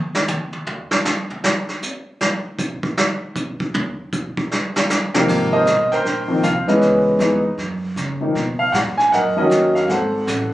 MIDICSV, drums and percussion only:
0, 0, Header, 1, 2, 480
1, 0, Start_track
1, 0, Tempo, 384369
1, 835, Time_signature, 4, 2, 24, 8
1, 13154, End_track
2, 0, Start_track
2, 0, Title_t, "Drums"
2, 184, Note_on_c, 9, 38, 93
2, 309, Note_off_c, 9, 38, 0
2, 349, Note_on_c, 9, 44, 44
2, 352, Note_on_c, 9, 48, 88
2, 474, Note_off_c, 9, 44, 0
2, 476, Note_off_c, 9, 48, 0
2, 657, Note_on_c, 9, 48, 36
2, 782, Note_off_c, 9, 48, 0
2, 832, Note_on_c, 9, 43, 86
2, 957, Note_off_c, 9, 43, 0
2, 1137, Note_on_c, 9, 38, 98
2, 1261, Note_off_c, 9, 38, 0
2, 1312, Note_on_c, 9, 44, 54
2, 1315, Note_on_c, 9, 38, 93
2, 1437, Note_off_c, 9, 44, 0
2, 1440, Note_off_c, 9, 38, 0
2, 1625, Note_on_c, 9, 43, 42
2, 1750, Note_off_c, 9, 43, 0
2, 1796, Note_on_c, 9, 38, 105
2, 1921, Note_off_c, 9, 38, 0
2, 2104, Note_on_c, 9, 38, 39
2, 2229, Note_off_c, 9, 38, 0
2, 2275, Note_on_c, 9, 44, 55
2, 2400, Note_off_c, 9, 44, 0
2, 2757, Note_on_c, 9, 38, 92
2, 2881, Note_off_c, 9, 38, 0
2, 3227, Note_on_c, 9, 44, 54
2, 3229, Note_on_c, 9, 36, 78
2, 3352, Note_off_c, 9, 44, 0
2, 3354, Note_off_c, 9, 36, 0
2, 3537, Note_on_c, 9, 36, 85
2, 3662, Note_off_c, 9, 36, 0
2, 3714, Note_on_c, 9, 38, 105
2, 3839, Note_off_c, 9, 38, 0
2, 4192, Note_on_c, 9, 36, 69
2, 4193, Note_on_c, 9, 44, 54
2, 4316, Note_off_c, 9, 36, 0
2, 4318, Note_off_c, 9, 44, 0
2, 4497, Note_on_c, 9, 36, 83
2, 4622, Note_off_c, 9, 36, 0
2, 4674, Note_on_c, 9, 43, 104
2, 4799, Note_off_c, 9, 43, 0
2, 5149, Note_on_c, 9, 44, 56
2, 5154, Note_on_c, 9, 36, 77
2, 5274, Note_off_c, 9, 44, 0
2, 5279, Note_off_c, 9, 36, 0
2, 5462, Note_on_c, 9, 36, 81
2, 5587, Note_off_c, 9, 36, 0
2, 5637, Note_on_c, 9, 38, 47
2, 5762, Note_off_c, 9, 38, 0
2, 5943, Note_on_c, 9, 38, 91
2, 6068, Note_off_c, 9, 38, 0
2, 6117, Note_on_c, 9, 44, 53
2, 6119, Note_on_c, 9, 38, 83
2, 6242, Note_off_c, 9, 44, 0
2, 6244, Note_off_c, 9, 38, 0
2, 6424, Note_on_c, 9, 38, 94
2, 6548, Note_off_c, 9, 38, 0
2, 6600, Note_on_c, 9, 36, 65
2, 6604, Note_on_c, 9, 25, 50
2, 6604, Note_on_c, 9, 38, 42
2, 6604, Note_on_c, 9, 49, 72
2, 6725, Note_off_c, 9, 36, 0
2, 6729, Note_off_c, 9, 38, 0
2, 6729, Note_off_c, 9, 49, 0
2, 7075, Note_on_c, 9, 44, 63
2, 7078, Note_on_c, 9, 38, 60
2, 7200, Note_off_c, 9, 44, 0
2, 7203, Note_off_c, 9, 38, 0
2, 7388, Note_on_c, 9, 38, 36
2, 7513, Note_off_c, 9, 38, 0
2, 7557, Note_off_c, 9, 25, 0
2, 7557, Note_on_c, 9, 25, 43
2, 7557, Note_on_c, 9, 38, 37
2, 7682, Note_off_c, 9, 38, 0
2, 8032, Note_on_c, 9, 44, 54
2, 8034, Note_on_c, 9, 38, 50
2, 8157, Note_off_c, 9, 44, 0
2, 8159, Note_off_c, 9, 38, 0
2, 8343, Note_on_c, 9, 38, 37
2, 8468, Note_off_c, 9, 38, 0
2, 8509, Note_off_c, 9, 25, 0
2, 8509, Note_on_c, 9, 25, 50
2, 8509, Note_on_c, 9, 38, 43
2, 8634, Note_off_c, 9, 38, 0
2, 8988, Note_on_c, 9, 44, 51
2, 8990, Note_on_c, 9, 38, 53
2, 9112, Note_off_c, 9, 44, 0
2, 9115, Note_off_c, 9, 38, 0
2, 9470, Note_off_c, 9, 25, 0
2, 9470, Note_on_c, 9, 25, 39
2, 9470, Note_on_c, 9, 38, 39
2, 9594, Note_off_c, 9, 38, 0
2, 9950, Note_on_c, 9, 44, 45
2, 9953, Note_on_c, 9, 38, 46
2, 10075, Note_off_c, 9, 44, 0
2, 10078, Note_off_c, 9, 38, 0
2, 10435, Note_off_c, 9, 25, 0
2, 10435, Note_on_c, 9, 25, 51
2, 10435, Note_on_c, 9, 38, 43
2, 10560, Note_off_c, 9, 38, 0
2, 10914, Note_on_c, 9, 44, 45
2, 10917, Note_on_c, 9, 38, 58
2, 11039, Note_off_c, 9, 44, 0
2, 11042, Note_off_c, 9, 38, 0
2, 11228, Note_on_c, 9, 38, 38
2, 11353, Note_off_c, 9, 38, 0
2, 11396, Note_off_c, 9, 25, 0
2, 11396, Note_on_c, 9, 25, 49
2, 11396, Note_on_c, 9, 38, 41
2, 11521, Note_off_c, 9, 38, 0
2, 11871, Note_on_c, 9, 44, 58
2, 11873, Note_on_c, 9, 38, 51
2, 11995, Note_off_c, 9, 44, 0
2, 11998, Note_off_c, 9, 38, 0
2, 12182, Note_on_c, 9, 38, 36
2, 12307, Note_off_c, 9, 38, 0
2, 12353, Note_off_c, 9, 25, 0
2, 12353, Note_on_c, 9, 25, 47
2, 12353, Note_on_c, 9, 38, 42
2, 12478, Note_off_c, 9, 38, 0
2, 12832, Note_on_c, 9, 44, 58
2, 12834, Note_on_c, 9, 38, 63
2, 12957, Note_off_c, 9, 44, 0
2, 12959, Note_off_c, 9, 38, 0
2, 13154, Note_off_c, 9, 25, 0
2, 13154, End_track
0, 0, End_of_file